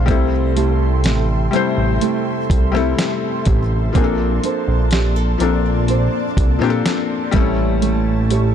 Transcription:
Already playing: felt piano F3 C4 C5 F5, nylon-string guitar C4 F4 A4, ambient pad A4 C6
0.06 analog synth bass C2, nylon-string guitar C3, felt piano G3 A3 C4 E4, ambient pad E5 G5, kick, closed hi-hat
0.10 felt piano A4
0.56 nylon-string guitar A3 E4 G4, closed hi-hat
1.04 analog synth bass A1, nylon-string guitar E4, snare, closed hi-hat
1.51 felt piano G3 A3 C4 E4, nylon-string guitar A3, closed hi-hat
1.56 felt piano C5
1.77 analog synth bass A1
2.01 nylon-string guitar A3 E4 G4, ambient pad A5, closed hi-hat
2.50 analog synth bass C2, kick, closed hi-hat
2.72 felt piano G3 A3 C4 E4, cross-stick
2.76 felt piano A4
2.99 snare, closed hi-hat
3.45 analog synth bass A1, nylon-string guitar G4, kick, closed hi-hat
3.93 analog synth bass A#1, felt piano F3 A#3 C4 D4, ambient pad A#3 D5, nylon-string guitar A#3, kick, closed hi-hat
3.97 felt piano G#4
4.04 felt piano A4
4.43 nylon-string guitar D4 A4 C5, closed hi-hat
4.68 analog synth bass A#1
4.91 nylon-string guitar G4, snare, closed hi-hat
5.16 nylon-string guitar A4
5.38 analog synth bass A#1, felt piano F3 A#3 C4 D4, nylon-string guitar D4, closed hi-hat
5.43 felt piano A4
5.88 nylon-string guitar D4 A4 C5, closed hi-hat
6.37 analog synth bass C2, kick, closed hi-hat
6.59 analog synth bass A#2, felt piano F3 A#3 C4 D4, cross-stick
6.63 felt piano G4
6.70 felt piano A4
6.86 snare, closed hi-hat
7.31 analog synth bass A1, felt piano G3 A3 C4 E4, nylon-string guitar A3, ambient pad G4 E5 C#6, kick, closed hi-hat
7.36 felt piano A4
7.40 felt piano C#4
7.82 nylon-string guitar A3, closed hi-hat
8.31 nylon-string guitar E4 G4 C#5, closed hi-hat

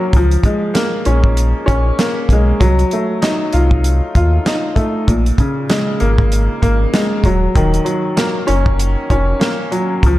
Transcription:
Already playing: upright piano F#3 A#3 C#4
0.13 sub bass C#2, upright piano F3, kick, closed hi-hat
0.31 closed hi-hat
0.43 upright piano G#3, kick, closed hi-hat
0.74 upright piano A#3, snare, closed hi-hat
1.05 sub bass A#1, upright piano C#4, closed hi-hat
1.24 kick
1.37 closed hi-hat
1.66 sub bass A#1, upright piano C#4, kick, closed hi-hat
1.99 upright piano A#3, snare, closed hi-hat
2.29 sub bass B1, upright piano G#3, kick, closed hi-hat
2.60 sub bass C2, upright piano F#3, kick, closed hi-hat
2.79 closed hi-hat
2.91 upright piano A3, closed hi-hat
3.22 upright piano D#4, snare, closed hi-hat
3.53 sub bass C2, upright piano F4, closed hi-hat
3.71 kick
3.84 closed hi-hat
4.15 sub bass D#2, upright piano F4, kick, closed hi-hat
4.46 upright piano D#4, snare, closed hi-hat
4.76 upright piano A3, kick, closed hi-hat
5.07 sub bass A#1, upright piano A#2, kick, closed hi-hat
5.26 closed hi-hat
5.38 upright piano C#3, kick, closed hi-hat
5.69 upright piano G#3, snare, closed hi-hat
6.00 sub bass G#1, upright piano A#3, closed hi-hat
6.18 kick
6.32 closed hi-hat
6.62 sub bass G#1, upright piano A#3, kick, closed hi-hat
6.93 upright piano G#3, snare, closed hi-hat
7.24 sub bass D#1, upright piano F#3, kick, closed hi-hat
7.55 sub bass D#1, upright piano D#3, kick, closed hi-hat
7.74 closed hi-hat
7.85 upright piano F#3, closed hi-hat
8.17 upright piano A#3, snare, closed hi-hat
8.47 sub bass F#1, upright piano C#4, closed hi-hat
8.66 kick
8.79 closed hi-hat
9.10 sub bass F1, upright piano C#4, kick, closed hi-hat
9.40 upright piano A#3, snare, closed hi-hat
9.71 upright piano F#3, closed hi-hat
10.03 sub bass C#2, upright piano F3, kick, closed hi-hat

